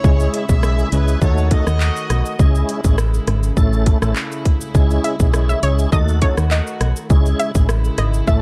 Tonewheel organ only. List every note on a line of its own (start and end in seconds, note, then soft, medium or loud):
0.04 0.45 G#3 loud
0.04 0.45 C#4 medium
0.04 0.46 E4 medium
0.04 0.46 G#4 loud
0.49 0.89 G#3 medium
0.49 0.89 C#4 medium
0.49 0.89 E4 medium
0.49 0.89 G#4 medium
0.92 1.20 G#3 medium
0.92 1.20 C#4 medium
0.92 1.20 E4 medium
0.92 1.20 G#4 medium
1.22 1.49 A3 medium
1.22 1.49 D#4 medium
1.22 1.49 F#4 medium
1.22 1.49 A4 loud
1.51 1.65 A3 medium
1.51 1.65 D#4 medium
1.51 1.65 F#4 medium
1.51 1.65 A4 medium
2.39 2.81 G#3 loud
2.39 2.81 C#4 medium
2.39 2.81 E4 medium
2.39 2.81 G#4 loud
2.84 2.97 G#3 medium
2.84 2.97 C#4 medium
2.84 2.97 E4 medium
2.84 2.97 G#4 medium
3.57 3.98 A3 medium
3.57 3.98 C#4 medium
3.57 3.98 E4 medium
3.57 3.98 A4 loud
4.02 4.14 A3 medium
4.02 4.14 C#4 medium
4.02 4.14 E4 medium
4.02 4.15 A4 medium
4.74 5.16 G#3 loud
4.74 5.16 C#4 medium
4.74 5.16 E4 medium
4.74 5.16 G#4 loud
5.19 5.60 G#3 medium
5.19 5.60 C#4 medium
5.19 5.60 E4 medium
5.19 5.60 G#4 medium
5.63 5.90 G#3 medium
5.63 5.90 C#4 medium
5.63 5.90 E4 medium
5.63 5.90 G#4 medium
5.92 6.19 A3 medium
5.92 6.20 D#4 medium
5.92 6.20 F#4 medium
5.92 6.20 A4 loud
6.22 6.36 A3 medium
6.22 6.36 D#4 medium
6.22 6.36 F#4 medium
6.22 6.36 A4 medium
7.10 7.51 G#3 loud
7.10 7.51 C#4 medium
7.10 7.51 E4 medium
7.10 7.52 G#4 loud
7.55 7.67 G#3 medium
7.55 7.67 C#4 medium
7.55 7.67 E4 medium
7.55 7.68 G#4 medium
8.27 8.42 A3 loud
8.27 8.42 C#4 medium
8.27 8.42 E4 medium
8.27 8.42 A4 loud